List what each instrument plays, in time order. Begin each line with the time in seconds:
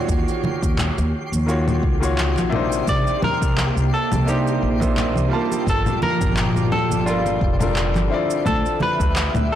Already playing: grand piano D3 D#3 A#3 C4 E4 F4 F#4 C#5 D5, synth texture G4 C7
0.09 upright bass D#2, kick, shaker
0.28 shaker
0.44 muted conga, high conga, low conga
0.63 upright bass D#2, kick, shaker
0.78 clap, low conga, shaker
0.98 upright bass D#2, muted conga, shaker
1.32 upright bass D#2, high conga, shaker
1.46 grand piano D#3 A#3 F4 F#4 C#5, shaker
1.68 muted conga, low conga, shaker
1.83 upright bass C#2, kick
2.00 grand piano D#3 A#3 F4 F#4 C#5, shaker
2.18 clap, muted conga, shaker
2.37 upright bass A#1, clap, high conga, shaker
2.50 grand piano C3 A#3 D4, low conga
2.54 grand piano D#4 C5
2.72 shaker
2.86 upright bass C2, analog synth pad A#3, clean electric guitar D5, kick, shaker
3.07 muted conga, shaker
3.22 clean electric guitar A#4, high conga, low conga
3.42 upright bass C2, kick, shaker
3.58 clap, muted conga, shaker
3.77 upright bass C2, shaker
3.94 clean electric guitar A4
4.12 upright bass C2, high conga, low conga, shaker
4.25 grand piano C3 A#3 D4 D#4 C5, clean electric guitar G4, muted conga, shaker
4.47 shaker
4.63 upright bass A#1
4.80 grand piano C3 A#3 D4 D#4 C5, kick, muted conga, shaker
4.97 clap, low conga, shaker
5.16 upright bass C2, high conga, shaker
5.28 grand piano G3 D4 F4
5.33 grand piano A#3 A5
5.52 muted conga, shaker
5.67 upright bass G1, analog synth pad A#2 F3, clean electric guitar A4, kick, shaker
5.86 low conga, shaker
6.02 clean electric guitar A#4, muted conga, high conga, low conga
6.21 upright bass G1, kick, shaker
6.37 clap, shaker
6.55 upright bass G1, shaker
6.72 clean electric guitar A4, muted conga, low conga
6.90 upright bass G1, high conga, shaker
7.05 grand piano G3 D4 F4 A4 A#4, clean electric guitar F4, shaker
7.26 muted conga, shaker
7.41 upright bass F1, kick
7.59 grand piano G3 D4 F4 A4 A#4, low conga, shaker
7.76 clap, shaker
7.95 upright bass G1, clap, muted conga, high conga, shaker
8.08 grand piano D3 C4 E4
8.12 grand piano F4 D5
8.30 shaker
8.46 upright bass D2, clean electric guitar A4, analog synth pad E5, kick, muted conga, low conga, shaker
8.66 shaker
8.80 clean electric guitar B4, high conga, low conga
9.00 upright bass D2, kick, shaker
9.16 clap, muted conga, shaker
9.34 upright bass D2, low conga, shaker